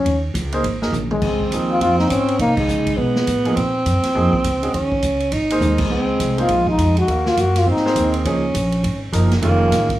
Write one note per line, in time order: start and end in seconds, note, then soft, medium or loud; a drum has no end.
0.00 0.21 C#4 loud
0.05 0.33 D#2 medium
0.05 kick soft
0.05 ride medium
0.34 0.63 C#2 medium
0.34 kick soft
0.34 hi-hat pedal medium
0.34 ride medium
0.52 0.63 A#3 medium
0.52 0.63 D#4 medium
0.52 0.63 G#4 medium
0.52 0.63 C5 medium
0.52 ride soft
0.63 0.91 G#1 medium
0.63 kick soft
0.63 ride medium
0.82 0.92 A#3 medium
0.82 0.92 D#4 medium
0.82 0.92 G#4 medium
0.82 0.92 A#4 medium
0.82 snare medium
0.92 1.21 A#1 medium
0.92 hi-hat pedal medium
0.92 mid tom soft
1.11 1.49 G#3 medium
1.11 mid tom medium
1.21 1.50 C#2 medium
1.21 2.40 C4 loud
1.21 kick medium
1.21 crash medium
1.40 kick medium
1.51 1.80 D#2 medium
1.51 1.96 F3 medium
1.51 1.96 A#3 soft
1.51 1.96 D#4 medium
1.51 1.96 G#4 medium
1.51 kick soft
1.51 hi-hat pedal medium
1.51 ride medium
1.71 1.81 F4 loud
1.81 2.09 F2 medium
1.81 1.98 F4 loud
1.81 kick soft
1.81 ride medium
1.99 2.12 D#4 medium
1.99 snare soft
2.10 2.38 G#2 medium
2.10 2.40 C#4 medium
2.10 kick soft
2.10 hi-hat pedal medium
2.10 ride medium
2.28 ride soft
2.39 2.68 C3 medium
2.39 2.57 A#3 loud
2.39 2.98 D#4 loud
2.39 kick soft
2.39 ride medium
2.57 3.42 G#3 medium
2.57 kick medium
2.57 crash medium
2.68 2.97 C#3 medium
2.68 hi-hat pedal medium
2.86 kick soft
2.86 ride medium
2.97 3.26 B2 medium
2.97 3.58 B3 loud
2.97 kick soft
3.16 snare medium
3.27 3.55 A2 medium
3.27 kick soft
3.27 hi-hat pedal medium
3.27 ride medium
3.45 3.55 F3 medium
3.45 3.55 A#3 medium
3.45 3.56 D#4 medium
3.45 3.56 G#4 medium
3.45 ride soft
3.56 3.85 A#2 medium
3.56 4.73 C4 loud
3.56 kick soft
3.56 ride medium
3.85 4.02 F#2 medium
3.85 kick soft
3.85 hi-hat pedal medium
3.85 ride medium
4.03 muted upright bass stroke soft
4.03 snare soft
4.03 ride medium
4.15 4.32 F2 medium
4.15 4.31 F3 medium
4.15 4.31 A#3 medium
4.15 4.31 D#4 medium
4.15 4.32 G#4 medium
4.15 kick soft
4.33 muted upright bass stroke soft
4.33 kick medium
4.44 4.73 C#2 medium
4.44 hi-hat pedal medium
4.44 ride medium
4.62 4.73 G#3 medium
4.62 4.73 C#4 medium
4.62 4.73 F#4 medium
4.62 4.73 G#4 medium
4.62 ride soft
4.74 5.02 D#2 medium
4.74 5.34 C#4 loud
4.74 kick soft
4.74 ride medium
4.92 kick medium
5.02 5.31 C#2 medium
5.02 kick soft
5.02 hi-hat pedal medium
5.02 ride medium
5.20 ride soft
5.32 5.60 G#1 medium
5.32 5.79 D#4 loud
5.32 kick soft
5.32 ride medium
5.50 5.89 A#3 medium
5.50 5.89 D#4 medium
5.50 5.89 G#4 medium
5.50 5.89 C5 medium
5.50 ride medium
5.60 5.89 D#2 medium
5.60 hi-hat pedal soft
5.60 high tom soft
5.78 6.41 G#3 medium
5.78 kick medium
5.78 crash medium
5.89 6.18 C#2 medium
5.89 6.50 C4 loud
6.20 6.48 C2 medium
6.20 kick soft
6.20 hi-hat pedal medium
6.20 ride medium
6.38 6.48 A#3 medium
6.38 6.48 D#4 medium
6.38 6.68 F4 loud
6.38 6.49 G#4 medium
6.38 6.49 C5 medium
6.38 ride soft
6.48 6.77 A#1 medium
6.48 7.09 G#3 medium
6.48 kick soft
6.48 ride medium
6.67 6.96 D#4 medium
6.67 kick medium
6.78 7.07 F2 medium
6.78 kick soft
6.78 hi-hat pedal soft
6.78 ride medium
6.97 7.29 F#4 loud
6.97 ride soft
7.07 7.36 D#2 medium
7.07 7.68 A#3 loud
7.07 kick soft
7.07 ride medium
7.26 7.41 F4 medium
7.26 snare medium
7.37 7.65 F#2 medium
7.37 7.60 F#4 loud
7.37 kick soft
7.37 hi-hat pedal medium
7.37 ride medium
7.55 7.68 F4 medium
7.55 snare soft
7.55 ride medium
7.66 7.95 G#2 medium
7.66 8.25 C4 medium
7.66 kick soft
7.70 8.12 D#4 medium
7.76 snare soft
7.85 8.23 A#3 medium
7.85 8.23 D#4 medium
7.85 8.24 G#4 medium
7.85 8.24 C5 medium
7.85 snare soft
7.95 8.24 D#2 medium
7.95 kick soft
7.95 hi-hat pedal medium
7.95 ride medium
8.14 ride soft
8.25 8.54 C#2 medium
8.25 8.41 F3 medium
8.25 8.42 A#3 medium
8.25 9.12 C#4 loud
8.25 8.42 D#4 medium
8.25 8.42 G#4 medium
8.25 kick soft
8.25 ride medium
8.54 8.83 A#1 medium
8.54 kick soft
8.54 hi-hat pedal medium
8.54 ride medium
8.72 ride soft
8.83 9.12 G#1 medium
8.83 kick soft
8.83 ride medium
9.12 9.41 F#1 medium
9.12 9.29 F3 medium
9.12 9.29 A#3 medium
9.12 9.29 D#4 medium
9.12 9.29 A#4 medium
9.12 kick soft
9.12 hi-hat pedal medium
9.12 ride medium
9.31 snare soft
9.31 ride soft
9.42 9.70 F1 medium
9.42 9.86 D#3 medium
9.42 9.86 G#3 medium
9.42 9.99 A#3 loud
9.42 9.86 C#4 medium
9.42 9.87 F4 medium
9.42 kick soft
9.42 ride medium
9.71 9.99 A1 loud
9.71 kick soft
9.71 snare soft
9.71 hi-hat pedal medium
9.71 ride medium
9.89 kick medium
9.89 ride soft